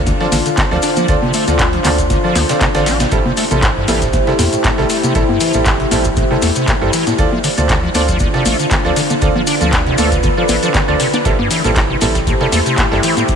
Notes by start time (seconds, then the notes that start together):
Already playing: D2 D3 D4 F4 C5
0.07 D3, kick, closed hi-hat, high conga, maracas
0.20 F3 C4 F4 A4 D5, snare
0.32 A1 D3, open hi-hat, high conga, maracas
0.46 D3, closed hi-hat, maracas
0.57 D3, kick, snare, clap, closed hi-hat, high conga, maracas
0.71 D2 F3 C4 F4 A4 D5, snare
0.82 D4, closed hi-hat, open hi-hat, maracas
0.96 F3, closed hi-hat, high conga, maracas
1.08 D2 D3 C4 F4 A4 D5, kick, closed hi-hat, maracas
1.22 C3, high conga
1.33 A3, closed hi-hat, open hi-hat, maracas
1.48 D2 D3 C4 F4 A4 D5, closed hi-hat, high conga, maracas
1.59 D3, kick, snare, clap, closed hi-hat, maracas
1.73 F3, closed hi-hat
1.84 D2 D3 C4 F4 A4 D5, clap, closed hi-hat, open hi-hat, high conga, maracas
1.98 D3, kick, closed hi-hat, maracas
2.10 D3, kick, closed hi-hat, high conga, maracas
2.24 F3 C4 F4 A4 D5
2.35 D2 D3, snare, closed hi-hat, open hi-hat, high conga, maracas
2.49 C3 C4 F4 A4 D5, snare, closed hi-hat, maracas
2.61 C3, kick, snare, clap, closed hi-hat, high conga, maracas
2.75 A1 D3 C4 F4 A4 D5, snare, closed hi-hat
2.86 D4, snare, closed hi-hat, open hi-hat, maracas
3.00 C3, snare, closed hi-hat, high conga, maracas
3.11 A1 A2 G3 A3 C4 E4 G4 A4, kick, closed hi-hat, maracas
3.26 C3, high conga
3.37 A3, snare, closed hi-hat, open hi-hat, maracas
3.51 A1 C3 G3 C4 E4 A4, closed hi-hat, high conga, maracas
3.63 A2, kick, snare, clap, closed hi-hat, maracas
3.76 G2
3.88 A1 E3 G3 C4 E4 A4, snare, closed hi-hat, open hi-hat, high conga, maracas
4.02 A2, kick, snare, closed hi-hat, maracas
4.13 A2, kick, closed hi-hat, high conga, maracas
4.27 C3 G3 C4 E4 A4, snare
4.39 E2 A2, open hi-hat, high conga, maracas
4.53 A2, closed hi-hat, maracas
4.64 A2, kick, snare, clap, closed hi-hat, high conga, maracas
4.78 A1 C3 G3 C4 E4 A4, snare
4.89 A3, closed hi-hat, open hi-hat, maracas
5.03 C3, closed hi-hat, high conga, maracas
5.15 A1 A2 G3 C4 E4 A4, kick, closed hi-hat, maracas
5.29 G2, high conga
5.40 E3, closed hi-hat, open hi-hat, maracas
5.53 A1 A2 G3 C4 E4 A4, closed hi-hat, high conga, maracas
5.66 A2, kick, snare, clap, closed hi-hat, maracas
5.80 C3, closed hi-hat
5.91 A1 A2 G3 C4 E4 A4, closed hi-hat, open hi-hat, high conga, maracas
6.05 A2, kick, closed hi-hat, maracas
6.16 A2, kick, closed hi-hat, high conga, maracas
6.31 C3 G3 C4 E4 A4
6.42 E2 A3, closed hi-hat, open hi-hat, high conga, maracas
6.56 C3, closed hi-hat, maracas
6.68 A2, kick, snare, clap, closed hi-hat, high conga, maracas
6.81 A1 G2 G3 C4 E4 A4
6.93 E3, closed hi-hat, open hi-hat, maracas
7.07 A2, snare, closed hi-hat, high conga, maracas
7.18 D2 D3 C4 D4 F4 A4 D5, kick, closed hi-hat, maracas
7.32 F3, high conga
7.44 D3, snare, closed hi-hat, open hi-hat, maracas
7.58 D2 D3 C4 F4 A4 D5, closed hi-hat, high conga, maracas
7.69 D3, kick, snare, clap, closed hi-hat, maracas
7.83 F3
7.95 D2 C4 D4 F4 A4 D5, snare, closed hi-hat, open hi-hat, high conga, maracas
8.09 F3, kick, snare, closed hi-hat, maracas
8.19 D3, kick, closed hi-hat, high conga, maracas
8.34 C3 C4 F4 A4 D5, snare
8.45 A1 A3, open hi-hat, high conga, maracas
8.59 D3, closed hi-hat, maracas
8.71 D3, kick, snare, clap, closed hi-hat, high conga, maracas
8.85 D2 F3 C4 F4 A4 D5, snare
8.96 D3, closed hi-hat, open hi-hat, maracas
9.10 D3, closed hi-hat, high conga, maracas
9.21 D2 D3 C4 F4 A4 B4 D5, kick, closed hi-hat, maracas
9.36 F3, high conga
9.47 D4, closed hi-hat, open hi-hat, maracas
9.61 D2 F3 C4 F4 A4 D5, closed hi-hat, high conga, maracas
9.73 D3, kick, snare, clap, closed hi-hat, maracas
9.86 C3, closed hi-hat
9.98 D2 A3 C4 F4 A4 D5, closed hi-hat, open hi-hat, high conga, maracas
10.12 D3, kick, closed hi-hat, maracas
10.23 D3, kick, closed hi-hat, high conga, maracas
10.37 F3 C4 F4 A4 D5
10.48 A1 E3, closed hi-hat, open hi-hat, high conga, maracas
10.63 F3 C4 F4 A4 D5, closed hi-hat, maracas
10.74 D3, kick, snare, clap, closed hi-hat, high conga, maracas
10.88 D2 D3 C4 F4 A4 D5
11.00 C3, closed hi-hat, open hi-hat, maracas
11.13 D4, snare, closed hi-hat, high conga, maracas
11.25 A1 A2 G3 A3 C4 E4 G4 A4 C5, kick, closed hi-hat, maracas
11.39 G2, high conga
11.51 E3, snare, closed hi-hat, open hi-hat, maracas
11.64 A1 A2 G3 C4 E4 A4, closed hi-hat, high conga, maracas
11.75 A2, kick, snare, clap, closed hi-hat, maracas
11.90 C3
12.01 A1 A2 G3 C4 E4 A4, snare, closed hi-hat, open hi-hat, high conga, maracas
12.15 A2, kick, snare, closed hi-hat, maracas
12.27 A2, kick, closed hi-hat, high conga, maracas
12.41 C3 G3 C4 E4 A4, snare
12.52 E2 A3, open hi-hat, high conga, maracas
12.66 C3, closed hi-hat, maracas
12.78 A2, kick, snare, clap, closed hi-hat, high conga, maracas
12.92 A1 G2 G3 C4 E4 A4, snare
13.03 E3, closed hi-hat, open hi-hat, maracas
13.17 A2, closed hi-hat, high conga, maracas
13.28 A1, kick, closed hi-hat, maracas